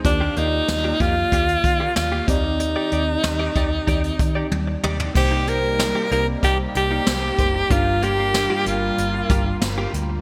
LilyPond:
<<
  \new Staff \with { instrumentName = "Alto saxophone" } { \time 4/4 \key c \minor \tempo 4 = 94 d'8 ees'4 f'4. f'8 ees'8~ | ees'2. r4 | g'8 bes'4 bes'8 g'8 g'4. | f'8 g'4 f'4. r4 | }
  \new Staff \with { instrumentName = "Clean electric guitar" } { \time 4/4 \key c \minor r16 <bes f' g'>16 <bes f' g'>16 r8 <bes f' g'>16 <bes f' g'>16 r16 <bes f' g'>16 r8 <bes f' g'>16 r16 <bes f' g'>16 r8 | r16 <ees' g' d''>16 <ees' g' d''>16 r8 <ees' g' d''>16 <ees' g' d''>16 r16 <ees' g' d''>16 r8 <ees' g' d''>16 r8 <ees' g' d''>16 <ees' g' d''>16 | r16 <bes ees' g'>16 <bes ees' g'>16 r8 <bes ees' g'>16 <bes ees' g'>16 r16 <bes ees' g'>16 r8 <bes ees' g'>16 r4 | <bes f' g'>16 r16 <bes f' g'>16 <bes f' g'>16 r16 <bes f' g'>16 <bes f' g'>16 r8. <bes f' g'>16 r8 <bes f' g'>16 r8 | }
  \new Staff \with { instrumentName = "FM electric piano" } { \time 4/4 \key c \minor <bes f' g' d''>2.~ <bes f' g' d''>8 <c' ees' g' d''>8~ | <c' ees' g' d''>2.~ <c' ees' g' d''>8 r8 | <bes ees' g' c''>2.~ <bes ees' g' c''>8 <bes ees' g' c''>8 | <g d' f' bes'>1 | }
  \new Staff \with { instrumentName = "FM electric piano" } { \clef bass \time 4/4 \key c \minor ees4. r2 ees8~ | ees4 r2. | c4. r2 r8 | g,4. r2 r8 | }
  \new Staff \with { instrumentName = "Analog synth pad" } { \time 4/4 \key c \minor r1 | r1 | <c g bes ees' d''>1 | <g bes f'>1 | }
  \new Staff \with { instrumentName = "Fingered electric bass" } { \clef bass \time 4/4 \key c \minor ees,8 ees,8 ees,8 f,8 ees,8 ees8 ees,8 ees,8~ | ees,8 ees,8 ees,8 ees,8 ees,8 ees8 ees,8 ees,8 | c,4~ c,16 r16 c,8 c,8 c,8 c,8 ges,,8 | g,,4~ g,,16 r16 g,,8 g,,8 g,,8 g,,8 d,8 | }
  \new DrumStaff \with { instrumentName = "Drums" } \drummode { \time 4/4 <hh bd>8 hh8 <hh sn>8 <hh bd>8 <hh bd>16 hh16 <hh bd>8 <hh sn>8 <hh bd>8 | hh8 hh8 <hh sn>8 <hh bd>8 <hh bd>16 hh16 <hh bd>8 tommh8 toml16 tomfh16 | <cymc bd>8 hh8 <hh sn>8 hh8 <hh bd>8 hh8 <hh sn>8 <hh bd>8 | <hh bd>8 hh8 <hh sn>8 hh8 hh8 <hh bd>8 <hh sn>8 hh8 | }
>>